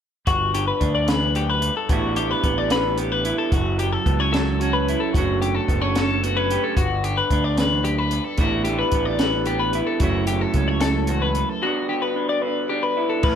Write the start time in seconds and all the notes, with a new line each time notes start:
0.27 G1 G2 F#4, kick, closed hi-hat
0.54 D3 G4, closed hi-hat
0.68 B4
0.81 D2 D4, kick, closed hi-hat
0.95 D5
1.07 E2 B4, snare, closed hi-hat
1.34 F#2 G4, closed hi-hat
1.50 B4
1.62 G2, closed hi-hat
1.77 A4
1.89 A1 A2 D3 G3 B3 E4 F#4, kick, closed hi-hat
2.15 D3 G4, closed hi-hat
2.31 B4
2.43 A1 B3, kick, closed hi-hat
2.58 D5
2.70 D3 B4, snare, closed hi-hat
2.97 B3 G4, closed hi-hat
3.12 B4
3.25 E4, closed hi-hat
3.38 A4
3.51 F#1 F#2 F#4, kick, closed hi-hat
3.78 F#3 G4, closed hi-hat
3.93 A4
4.06 C#2 B3, kick, closed hi-hat
4.19 C#4 C#5
4.33 F#3 A4, snare, closed hi-hat
4.60 C#4 F#4, closed hi-hat
4.73 B4
4.88 E4, closed hi-hat
5.00 A4
5.13 F#1 F#2 D3 A3 F#4, kick, closed hi-hat
5.17 C#4 F#4
5.41 D3 G4, closed hi-hat
5.55 A4
5.68 F#1 B3, kick, closed hi-hat
5.81 C#4 C#5
5.95 D3 A4, snare, closed hi-hat
6.23 B3 F#4, closed hi-hat
6.37 C#4 B4
6.51 G4, closed hi-hat
6.64 A4
6.76 G1 G2 F#4, kick, closed hi-hat
7.04 D3 G4, closed hi-hat
7.17 B4
7.30 D2 D4, kick, closed hi-hat
7.44 D5
7.57 E2 B4, snare, closed hi-hat
7.84 F#2 G4, closed hi-hat
7.98 B4
8.11 G2, closed hi-hat
8.24 A4
8.38 A1 A2 D3 G3 B3 E4 F#4, kick, closed hi-hat
8.64 D3 G4, closed hi-hat
8.79 B4
8.92 A1 B3, kick, closed hi-hat
9.05 D5
9.19 D3 B4, snare, closed hi-hat
9.46 B3 G4, closed hi-hat
9.60 B4
9.73 E4, closed hi-hat
9.87 A4
10.00 F#1 F#2 F#3 A3 C#4 E4 F#4, kick, closed hi-hat
10.27 F#3 G4, closed hi-hat
10.41 A4
10.54 C#2 C#4, kick, closed hi-hat
10.68 C#5
10.81 A4, snare, closed hi-hat
11.07 E2 F#4, closed hi-hat
11.22 B4
11.35 F#2, closed hi-hat
11.49 A4
11.62 G2 D3 B3 D4 F#4
11.89 D3 G4
12.02 B4
12.16 D4
12.29 D5
12.42 D3 B4
12.69 D4 G4
12.83 B4
12.97 E4
13.09 A4
13.23 A1 A2 B4, kick, crash